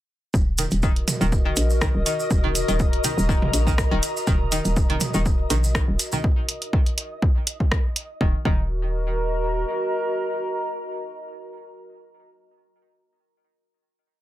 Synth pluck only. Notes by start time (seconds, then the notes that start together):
0.58 D#3
0.83 D#3
1.21 D#3
1.45 D#3
1.81 D#3
2.06 D#3
2.44 D#3
2.68 D#3
3.04 D#3
3.29 D#3
3.67 D#3
3.91 D#3
4.27 D#3
4.52 D#3
4.90 D#3
5.14 D#3
5.50 D#3
5.75 D#3
6.13 D#3
8.21 D#3
8.45 D#3